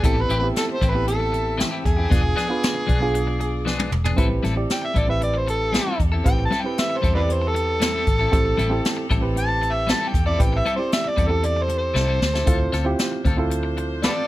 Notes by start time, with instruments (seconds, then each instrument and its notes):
0.02 fingered electric bass A1, clean electric guitar E3 C4 E4 G4, reed electric piano B3 C4 E4 G4, horn section G4 A4 E5, harmonica A4, kick, closed hi-hat
0.17 muted clean electric guitar stroke
0.21 harmonica B4
0.29 fingered electric bass A1, clean electric guitar E3 C4 E4 G4, closed hi-hat
0.39 reed electric piano B3 C4 E4, harmonica B4, muted clean electric guitar stroke
0.43 reed electric piano G4
0.56 harmonica A4, snare, closed hi-hat
0.69 muted clean electric guitar stroke
0.73 harmonica C5
0.81 fingered electric bass A1, clean electric guitar E3 C4 E4 G4, kick, closed hi-hat
0.90 harmonica B4
0.94 reed electric piano B3 C4 E4 G4, muted clean electric guitar stroke
1.07 harmonica A4, muted clean electric guitar stroke, closed hi-hat
1.20 muted clean electric guitar stroke
1.32 muted clean electric guitar stroke, closed hi-hat
1.58 clean electric guitar E3 C4 E4 G4, snare, closed hi-hat
1.71 clean electric guitar E3 C4 E4 G4
1.85 fingered electric bass E2, harmonica G#4, muted clean electric guitar stroke, kick, closed hi-hat
1.97 clean electric guitar C4 E4 G4
2.10 fingered electric bass E1, clean electric guitar F3 B3 D4 G#4, reed electric piano B3 D4 F4 G#4, horn section F4 G#4 D5, kick, closed hi-hat
2.23 muted clean electric guitar stroke
2.36 clean electric guitar F3 B3 D4 G#4, snare, closed hi-hat
2.49 reed electric piano B3 D4 F4 B4, muted clean electric guitar stroke
2.63 snare, closed hi-hat
2.74 muted clean electric guitar stroke
2.87 fingered electric bass B1, clean electric guitar F3 B3 D4 G#4, kick, closed hi-hat
3.00 reed electric piano B3 D4 F4 G#4, muted clean electric guitar stroke
3.14 muted clean electric guitar stroke, closed hi-hat
3.27 muted clean electric guitar stroke
3.39 muted clean electric guitar stroke, closed hi-hat
3.65 clean electric guitar F3 B3 D4 G#4, snare
3.78 clean electric guitar F3 B3 D4 G#4, high tom
3.92 fingered electric bass E1, muted clean electric guitar stroke, mid tom
4.04 clean electric guitar B3 D4 G#4, floor tom
4.16 fingered electric bass A1, clean electric guitar G3 C4 E4 A4, reed electric piano C4 E4 G4 B4, horn section C4 G4 A4, kick, closed hi-hat
4.30 muted clean electric guitar stroke
4.43 fingered electric bass A1, clean electric guitar G3 C4 E4 A4, snare, closed hi-hat
4.56 reed electric piano C4 E4 G4 D5, muted clean electric guitar stroke
4.70 harmonica G5, snare, closed hi-hat
4.82 harmonica E5, muted clean electric guitar stroke
4.94 fingered electric bass A1, clean electric guitar G3 C4 E4 A4, harmonica D5, kick, closed hi-hat
5.08 reed electric piano C4 E4 G4 B4, harmonica E5, muted clean electric guitar stroke
5.21 harmonica D5, muted clean electric guitar stroke, closed hi-hat
5.34 harmonica C5, muted clean electric guitar stroke
5.47 harmonica A4, muted clean electric guitar stroke, closed hi-hat
5.72 clean electric guitar G3 C4 E4 A4, snare, closed hi-hat
5.86 clean electric guitar G3 C4 E4 A4
6.00 fingered electric bass E2, kick, closed hi-hat
6.12 clean electric guitar C4 E4 A4
6.24 fingered electric bass A1, reed electric piano C4 E4 G4 B4, harmonica G5, kick, closed hi-hat
6.38 muted clean electric guitar stroke
6.45 harmonica A5
6.51 clean electric guitar G3 C4 E4 A4, snare, closed hi-hat
6.61 reed electric piano C4 E4, harmonica G5, muted clean electric guitar stroke
6.65 reed electric piano G4 B4
6.78 harmonica E5, snare, closed hi-hat
6.90 muted clean electric guitar stroke
6.97 harmonica C5
7.02 fingered electric bass E2, clean electric guitar G3 C4 E4 A4, kick, closed hi-hat
7.14 reed electric piano C4 E4 G4 B4, harmonica G4 B4 D5, muted clean electric guitar stroke
7.28 muted clean electric guitar stroke, closed hi-hat
7.33 harmonica C5
7.42 muted clean electric guitar stroke
7.48 harmonica A4
7.54 muted clean electric guitar stroke, closed hi-hat
7.80 clean electric guitar G3 C4 E4 A4, snare, closed hi-hat
7.93 clean electric guitar G3 C4 E4 A4
8.07 fingered electric bass A1, muted clean electric guitar stroke, kick, closed hi-hat
8.19 clean electric guitar C4 E4 A4
8.32 fingered electric bass A1, reed electric piano C4 E4 G4 A4, kick, closed hi-hat
8.45 muted clean electric guitar stroke
8.58 fingered electric bass A1, clean electric guitar G3 C4 E4 A4, closed hi-hat
8.70 reed electric piano C4 E4 G4 A4, muted clean electric guitar stroke
8.85 snare, closed hi-hat
8.97 muted clean electric guitar stroke
9.10 fingered electric bass A1, clean electric guitar G3 C4 E4 A4, kick, closed hi-hat
9.21 reed electric piano C4 E4 G4 B4, muted clean electric guitar stroke
9.35 harmonica A5, muted clean electric guitar stroke, closed hi-hat
9.49 muted clean electric guitar stroke
9.62 muted clean electric guitar stroke, closed hi-hat
9.73 harmonica E5
9.87 clean electric guitar G3 C4 E4 A4, harmonica A5, snare, closed hi-hat
10.00 clean electric guitar G3 C4 E4 A4
10.08 harmonica G5
10.13 fingered electric bass E2, muted clean electric guitar stroke, kick, closed hi-hat
10.26 clean electric guitar C4 E4 A4, harmonica D5
10.38 fingered electric bass A1, reed electric piano C4 E4 G4 B4, harmonica G5, kick, closed hi-hat
10.53 muted clean electric guitar stroke
10.58 harmonica E5
10.66 clean electric guitar G3 C4 E4 A4, closed hi-hat
10.76 reed electric piano C4 E4 G4 D5, harmonica C5, muted clean electric guitar stroke
10.92 harmonica E5, snare, closed hi-hat
11.04 harmonica D5, muted clean electric guitar stroke
11.16 fingered electric bass E2, clean electric guitar G3 C4 E4 A4, kick, closed hi-hat
11.27 reed electric piano C4 E4 G4, harmonica A4, muted clean electric guitar stroke
11.31 reed electric piano A4
11.43 harmonica D5, muted clean electric guitar stroke, closed hi-hat
11.56 muted clean electric guitar stroke
11.62 harmonica C5
11.68 muted clean electric guitar stroke, closed hi-hat
11.78 harmonica C5
11.94 fingered electric bass C2, clean electric guitar G3 C4 E4 A4, snare
12.08 clean electric guitar G3 C4 E4 A4
12.21 fingered electric bass D2, muted clean electric guitar stroke, snare
12.34 clean electric guitar C4 E4 A4, snare
12.46 fingered electric bass D2, horn section F3 D4 C5, reed electric piano C4 E4 F4 A4, clean electric guitar C4 F4 A4, kick, closed hi-hat
12.60 muted clean electric guitar stroke
12.72 fingered electric bass D2, clean electric guitar C4 F4 A4, snare, closed hi-hat
12.85 reed electric piano C4 E4 F4 G4, muted clean electric guitar stroke
12.99 snare, closed hi-hat
13.12 muted clean electric guitar stroke
13.25 fingered electric bass D2, clean electric guitar C4 F4 A4, kick, closed hi-hat
13.37 reed electric piano C4 E4 F4 A4, muted clean electric guitar stroke
13.51 muted clean electric guitar stroke, closed hi-hat
13.63 muted clean electric guitar stroke
13.77 muted clean electric guitar stroke, closed hi-hat
14.03 clean electric guitar C4 F4 A4, harmonica G4 B4 D5, snare, closed hi-hat
14.16 clean electric guitar C4 F4 A4